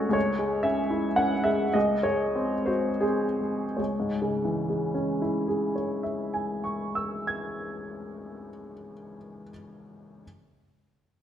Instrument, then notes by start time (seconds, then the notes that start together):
upright piano
Already playing: C#2 A3 C#4 F#4 A4 C#5 D#5
0.09 C#2
0.13 C#5
0.39 G#3
0.63 C#4 E5
0.90 E4
1.16 C#4 F#5
1.44 G#3 E5
1.74 C#2 D#5
2.03 G#3 C#5
2.36 C4
2.66 F#4 C5
3.01 C4 G#4
3.41 G#3
3.77 C#2 C#5
4.00 G#2
4.22 C#3
4.45 E3
4.70 G#3
4.95 C#4
5.22 E4
5.48 G#4
5.76 C#5
6.03 E5
6.34 G#5
6.64 C#6
6.95 E6
7.27 G#6